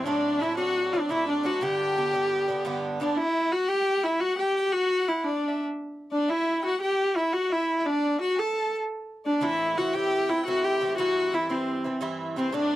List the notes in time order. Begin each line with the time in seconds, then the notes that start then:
0.04 A2 F#3 C4 D4 D5
0.39 A2 F#3 C4 D4 E4 E5
0.56 A2 F#3 C4 D4 F#4 F#5
0.92 F#3 C4 D4 D5
1.09 A2 F#3 C4 D4 E4 E5
1.28 D4 D5
1.43 A2 F#3 C4 D4 F#4 F#5
1.61 G2 D3 B3 D4 G4 G5
1.96 G2 D3 B3 D4
2.14 G2 D3 B3 D4
2.48 D3 B3 D4
2.65 G2 D3 B3 D4
3.00 G2 D3 B3 D4 D5
3.17 E4 E5
3.52 F#4 F#5
3.68 G4 G5
4.04 E4 E5
4.20 F#4 F#5
4.38 G4 G5
4.56 G5
4.72 F#4 F#5
5.08 E4
5.24 D4 D5
5.48 E5
6.11 D4 D5
6.28 E4 E5
6.61 F#5 G5
6.65 F#4
6.81 G4 G5
7.17 E4 E5
7.33 F#4 F#5
7.51 E4 E5
7.78 E5
7.84 D4 D5
8.21 F#4 F#5
8.37 A4 A5
9.25 D4 D5
9.41 A2 E3 C4 E4 E5
9.77 A2 E3 C4 E4 F#4 F#5
9.93 A2 E3 C4 E4 G4 G5
10.29 E3 C4 E4
10.45 A2 E3 C4 E4 F#4 F#5
10.64 G4 G5
10.81 A2 E3 C4 E4
10.97 G2 E3 C4 E4 F#4 F#5
11.15 F#5
11.32 G2 E3 C4 E4 E5
11.49 G2 E3 C4 E4 C5
11.84 E3 C4 E4
12.01 G2 E3 C4 E4
12.36 G2 E3 C4 E4 C5
12.52 A2 F#3 C4 D4 D5